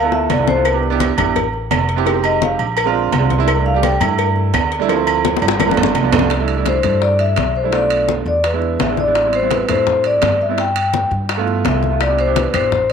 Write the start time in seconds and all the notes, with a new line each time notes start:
Already playing: D2 F5
0.02 B3 E4 F4 A4
0.12 E5, high bongo, high conga
0.29 C2 D5, cowbell, high conga, low timbale, low agogo
0.38 B3 E4 F4 A4
0.47 C5, cowbell, low bongo, high conga
0.55 B3 E4 F4 A4
0.65 B4, cowbell, high conga, low agogo, claves
0.72 B3 D4 E4 G4
0.83 high conga
0.90 B3 D4 E4 G4
1.00 cowbell, high conga, low timbale, low agogo
1.17 A1 B3 D4 E4 G4, cowbell, high conga, low conga, low agogo, claves
1.36 cowbell, high conga, low conga, low agogo
1.54 high conga
1.71 F1, cowbell, high conga, low timbale, low agogo, claves
1.89 cowbell
1.96 B3 C4 E4 G4
2.05 G#3 C4 D#4 G4, cowbell, high conga, low agogo
2.24 D#5, high conga, low agogo, claves
2.41 F5, cowbell, high conga, low timbale
2.59 A#1, high conga, low agogo
2.77 cowbell, high conga, low agogo, claves
2.85 G#3 C4 D4 F4
2.95 high conga
3.12 C2, cowbell, high conga, low timbale, low agogo
3.20 G#3 C4 D4 F4
3.30 cowbell, high conga
3.38 G#3 C4 D4 E4
3.48 cowbell, low agogo, claves
3.56 G3 A3 D4 E4
3.65 F5, high conga
3.74 G3 A3 D4 G4
3.83 G5, cowbell, high conga, low timbale, low agogo
4.00 G2 G3 A3 D4 E4, cowbell, high conga, low conga, low agogo, claves
4.18 cowbell, high conga, low agogo
4.36 high conga
4.53 D2, cowbell, high conga, low timbale, low agogo, claves
4.72 cowbell
4.79 G3 A3 D4 E4
4.89 F3 A3 C4 E4, cowbell, high conga, low agogo
5.07 high conga, low agogo, claves
5.25 cowbell, high bongo, high conga, low timbale
5.37 high bongo
5.42 G1, high conga, high timbale, low agogo
5.48 high bongo
5.60 cowbell, low bongo, high conga, high timbale, low agogo, claves
5.67 F3 A3 B3 D4
5.71 low bongo
5.77 low conga, low timbale
5.83 low bongo
5.95 C2, cowbell, low bongo, low timbale, low agogo
6.03 F3 A3 B3 D4
6.12 cowbell, low conga, low timbale
6.19 F3 A3 B3 D4, low bongo
6.30 high bongo, high conga, high timbale
6.39 G3 A3 D4 E4
6.48 high conga, high timbale
6.56 G3 A3 D4 E4
6.66 C5, high bongo, high conga, high timbale, low timbale
6.82 G2 G3 A3 D4 E4, high conga, low conga, high timbale
7.02 D5, high bongo, high conga
7.19 E5, high conga, high timbale
7.36 B1, high bongo, low bongo, high conga, high timbale, low timbale
7.55 C5, high conga
7.63 G3 A3 D4 E4
7.72 A3 B3 D4 F4 D5, high bongo, high conga, high timbale
7.90 high conga, high timbale
8.09 high bongo, high conga, low timbale
8.26 E2 D5, high bongo, high conga
8.44 B4, high bongo, high conga, high timbale
8.53 G#3 B3 D4 E4
8.62 high bongo, high conga
8.79 A1 E5, high bongo, low bongo, high conga, high timbale, low timbale
8.88 G#3 B3 D4 E4
8.97 D5, high bongo, high conga
9.06 G#3 B3 D4 E4
9.15 high bongo, high conga, high timbale
9.24 G3 B3 C4 E4
9.33 C5, high conga, high timbale
9.42 G3 B3 C4 E4
9.51 B4, high bongo, high conga, high timbale, low timbale
9.68 A2 G3 A3 C4 E4 C5, high conga, low conga, high timbale
9.87 high bongo, high conga, low conga
10.04 D5, high conga, high timbale
10.22 G2, high bongo, low bongo, high conga, high timbale, low timbale
10.41 E5, high conga
10.49 G3 B3 C4 E4
10.58 G5, high bongo, high conga, high timbale
10.76 G5, high conga, high timbale
10.93 high bongo, high conga, low timbale
11.11 G2, high bongo, high conga
11.29 high bongo, high conga, high timbale
11.37 A3 B3 E4 F4
11.47 high bongo, high conga
11.64 C2 E5, high bongo, low bongo, high conga, high timbale, low timbale
11.73 A3 B3 E4 F4
11.83 high bongo, high conga
11.90 A3 B3 E4 F4
12.01 D5, high bongo, high conga, high timbale, claves
12.08 B3 D4 E4 G4
12.19 C5, high conga, high timbale
12.26 B3 D4 E4 G4
12.36 B4, high bongo, high conga, high timbale, low timbale
12.52 A1 B3 D4 E4 G4 C5, high conga, low conga, high timbale, claves
12.72 high bongo, high conga, low conga
12.90 high timbale